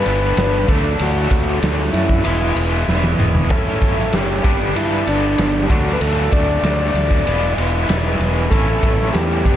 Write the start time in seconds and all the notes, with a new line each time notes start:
Already playing: G2 D3 G3 B3 D4 B4 D5 G5 B5
0.06 G1, ride
0.37 G1, snare, ride
0.67 D2 D3 F#3 A3 D4 A4 F#5 A5, kick, ride
0.99 D2 F#4, ride
1.31 D2, kick, ride
1.63 D2, snare, ride
1.93 F#2 E4, ride
2.09 kick
2.24 E1 E3 G#3 B3 E4 B4 E5 G#5, ride
2.56 E1, ride
2.88 E1, snare
3.04 high tom
3.18 E1, mid tom
3.35 floor tom
3.50 A1 A2 E3 A3 C#4 E4 A4 C#5 A5, kick, ride
3.67 snare
3.82 A1, kick, ride
3.99 snare
4.12 F#1 G4, snare, ride
4.43 G1 G2 D3 G3 B3 D4 D5 G5 B5, kick, ride
4.75 G2 E4, ride
5.07 G1 D4, ride
5.38 G1, snare, ride
5.63 G4
5.69 D2 D3 F#3 A3 D4 F#4 F#5 A5, kick, ride
5.93 B4
6.01 D2 A4, ride
6.32 D2 D5, kick, ride
6.62 D2, snare, ride
6.94 D2, ride
7.11 kick
7.23 E1 E3 G#3 B4 E5 G#5, ride
7.28 B3 E4
7.58 E1, ride
7.89 E1, snare, ride
8.19 E1, ride
8.50 A1 A2 E3 A3 C#4 E4 A4 C#5 E5 A5, kick, ride
8.83 A1, kick, snare, ride
9.01 snare
9.13 E2 G4, snare, ride
9.31 snare
9.44 G1 G2 D3 G3 B3 D4 D5 B5, kick, ride